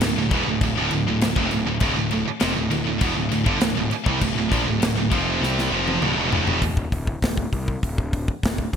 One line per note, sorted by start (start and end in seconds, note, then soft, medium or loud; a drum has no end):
0.01 0.16 D1 medium
0.01 0.17 D2 medium
0.01 0.18 A2 medium
0.01 snare loud
0.01 crash medium
0.16 0.30 D1 medium
0.16 0.33 D2 medium
0.16 0.33 A2 medium
0.31 0.46 E1 loud
0.31 0.47 E2 medium
0.31 0.47 B2 loud
0.31 kick loud
0.31 crash medium
0.46 0.61 D1 medium
0.46 0.62 D2 medium
0.46 0.62 A2 medium
0.61 0.75 D1 medium
0.61 0.77 D2 medium
0.61 0.77 A2 medium
0.61 kick medium
0.61 crash medium
0.77 0.91 D1 loud
0.77 0.92 D2 loud
0.77 0.92 A2 loud
0.91 1.06 D1 medium
0.91 1.07 D2 medium
0.91 1.08 A2 medium
0.91 crash medium
1.07 1.21 D1 medium
1.07 1.22 D2 medium
1.07 1.23 A2 medium
1.21 1.35 D1 medium
1.21 1.37 D2 medium
1.21 1.38 A2 medium
1.21 snare loud
1.21 crash medium
1.36 1.50 F1 medium
1.36 1.51 F2 medium
1.36 1.52 C3 loud
1.36 kick loud
1.51 1.66 D1 medium
1.51 1.66 D2 medium
1.51 1.66 A2 medium
1.51 crash medium
1.67 1.81 D1 medium
1.67 1.81 D2 medium
1.67 1.81 A2 medium
1.80 1.95 D1 loud
1.80 1.96 D2 loud
1.80 1.96 A2 loud
1.80 kick loud
1.80 crash medium
1.97 2.11 D1 medium
1.97 2.11 D2 medium
1.97 2.12 A2 medium
2.11 2.26 D1 medium
2.11 2.27 D2 medium
2.11 2.27 A2 medium
2.11 crash medium
2.27 muted picked electric bass stroke soft
2.27 muted distorted electric guitar stroke medium
2.40 2.55 F1 loud
2.40 2.56 F2 loud
2.40 2.56 C3 loud
2.40 snare loud
2.40 crash medium
2.56 2.70 D1 medium
2.56 2.69 D2 medium
2.56 2.70 A2 medium
2.71 2.85 D1 medium
2.71 2.85 D2 medium
2.71 2.86 A2 medium
2.71 crash medium
2.86 3.00 D1 medium
2.86 3.01 D2 medium
2.86 3.02 A2 medium
3.01 3.14 E1 medium
3.01 3.16 E2 loud
3.01 3.16 B2 loud
3.01 kick loud
3.01 crash medium
3.15 3.30 D1 medium
3.15 3.31 D2 medium
3.15 3.30 A2 medium
3.31 3.45 D1 medium
3.31 3.46 D2 medium
3.31 3.47 A2 medium
3.31 crash medium
3.46 3.59 G1 loud
3.46 3.60 G2 medium
3.46 3.61 D3 loud
3.46 kick loud
3.60 3.75 D1 medium
3.60 3.76 D2 medium
3.60 3.77 A2 medium
3.60 snare loud
3.60 crash medium
3.76 3.90 D1 medium
3.76 3.91 D2 medium
3.76 3.92 A2 medium
3.91 muted picked electric bass stroke soft
3.91 muted distorted electric guitar stroke medium
3.91 crash medium
4.06 4.20 C2 loud
4.06 4.21 C3 medium
4.06 4.22 G3 loud
4.06 kick loud
4.21 4.35 D1 medium
4.21 4.37 D2 medium
4.21 4.37 A2 medium
4.21 kick loud
4.21 crash medium
4.33 4.50 D1 medium
4.33 4.49 D2 medium
4.33 4.50 A2 medium
4.38 4.52 D2 medium
4.38 4.52 A2 medium
4.52 4.65 A#1 medium
4.52 4.66 A#2 medium
4.52 4.67 F3 loud
4.52 kick loud
4.52 crash medium
4.65 4.80 D1 medium
4.65 4.82 D2 medium
4.65 4.82 A2 medium
4.81 4.95 D1 medium
4.81 4.96 D2 medium
4.81 4.97 A2 medium
4.81 snare loud
4.81 crash medium
4.96 5.10 D1 medium
4.96 5.12 D2 medium
4.96 5.12 A2 medium
5.11 5.39 F1 loud
5.11 5.41 F2 medium
5.11 5.41 C3 medium
5.11 5.41 F3 loud
5.11 kick loud
5.11 crash medium
5.41 5.69 C2 medium
5.41 5.71 C3 medium
5.41 5.72 G3 loud
5.41 5.72 C4 loud
5.41 snare medium
5.59 snare medium
5.71 5.99 F1 loud
5.71 6.01 F2 loud
5.71 6.01 C3 loud
5.71 6.01 F3 loud
5.88 high tom medium
6.01 6.15 D1 medium
6.01 6.16 D2 medium
6.01 6.16 A2 loud
6.01 mid tom medium
6.17 6.30 E1 medium
6.17 6.31 E2 medium
6.17 6.32 B2 loud
6.31 6.45 D1 medium
6.31 6.46 D2 medium
6.31 6.46 A2 loud
6.31 floor tom loud
6.46 6.60 E1 loud
6.46 6.61 E2 medium
6.46 6.61 B2 medium
6.46 floor tom loud
6.62 6.84 D1 medium
6.62 kick medium
6.62 open hi-hat medium
6.77 kick medium
6.92 7.14 D1 medium
6.92 kick medium
6.92 open hi-hat medium
7.07 kick medium
7.22 7.45 D1 medium
7.22 kick medium
7.22 snare loud
7.22 open hi-hat medium
7.37 kick medium
7.53 7.75 C2 medium
7.53 kick medium
7.53 open hi-hat soft
7.68 kick medium
7.83 8.27 D1 medium
7.83 kick medium
7.83 open hi-hat medium
7.98 kick medium
8.13 kick medium
8.13 open hi-hat medium
8.28 kick medium
8.43 8.65 D1 medium
8.43 kick medium
8.43 snare loud
8.43 open hi-hat medium
8.58 kick medium
8.73 8.77 A1 medium
8.73 kick medium